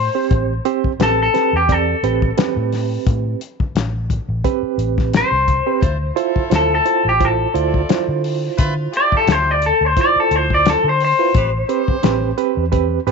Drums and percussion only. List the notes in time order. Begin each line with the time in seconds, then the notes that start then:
0.31 kick, closed hi-hat
0.65 closed hi-hat
0.84 kick
1.00 snare, closed hi-hat
1.35 snare, closed hi-hat
1.69 kick, closed hi-hat
2.04 closed hi-hat
2.22 kick
2.38 snare, closed hi-hat
2.72 snare, open hi-hat
3.07 kick, closed hi-hat
3.41 closed hi-hat
3.60 kick
3.76 snare, closed hi-hat
4.10 kick, closed hi-hat
4.44 kick, closed hi-hat
4.79 closed hi-hat
4.98 kick, snare
5.13 snare, closed hi-hat
5.48 kick, closed hi-hat
5.82 kick, closed hi-hat
6.17 closed hi-hat
6.36 kick
6.51 snare, closed hi-hat
6.86 closed hi-hat
7.21 kick, closed hi-hat
7.55 closed hi-hat
7.74 kick
7.89 snare, closed hi-hat
8.24 open hi-hat
8.58 kick, closed hi-hat
8.93 closed hi-hat
9.12 kick
9.27 snare, closed hi-hat
9.62 closed hi-hat
9.97 kick, closed hi-hat
10.31 closed hi-hat
10.50 kick
10.66 snare, closed hi-hat
11.00 open hi-hat
11.34 kick, closed hi-hat
11.69 closed hi-hat
11.88 kick
12.03 snare, closed hi-hat
12.38 closed hi-hat
12.73 kick, closed hi-hat
13.07 closed hi-hat